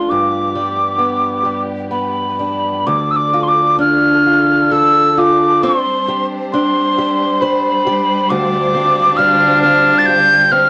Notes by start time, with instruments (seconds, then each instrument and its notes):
Already playing: steel-string acoustic guitar F3 A3 D4 F4, string section F3, tin whistle C6
0.10 steel-string acoustic guitar G2, string section B3 G4, tin whistle D6
0.55 steel-string acoustic guitar G3
0.98 steel-string acoustic guitar B3
1.45 steel-string acoustic guitar G3
1.91 steel-string acoustic guitar B3, tin whistle B5
2.39 steel-string acoustic guitar D4
2.86 steel-string acoustic guitar D2, string section F3 D4 A4, tin whistle D6
3.11 tin whistle E6
3.16 tin whistle D6
3.33 steel-string acoustic guitar F4
3.43 tin whistle C6
3.48 tin whistle D6
3.79 steel-string acoustic guitar D4, tin whistle F6
4.26 steel-string acoustic guitar F4
4.71 steel-string acoustic guitar A4, tin whistle E6
5.17 steel-string acoustic guitar F4, tin whistle D6
5.63 string section G3 C5, steel-string acoustic guitar C4, tin whistle C6
6.08 steel-string acoustic guitar G4
6.53 steel-string acoustic guitar D4, tin whistle C6
6.98 steel-string acoustic guitar G4
7.41 steel-string acoustic guitar C5, tin whistle B5
7.87 steel-string acoustic guitar G4
8.28 steel-string acoustic guitar D2, string section D3 F4, cello D4, tin whistle D6
8.75 steel-string acoustic guitar C4
9.17 steel-string acoustic guitar G3, tin whistle F6
9.62 steel-string acoustic guitar C4, tin whistle F6
9.99 tin whistle A6
10.06 steel-string acoustic guitar G4, tin whistle G6
10.52 steel-string acoustic guitar C4, tin whistle F6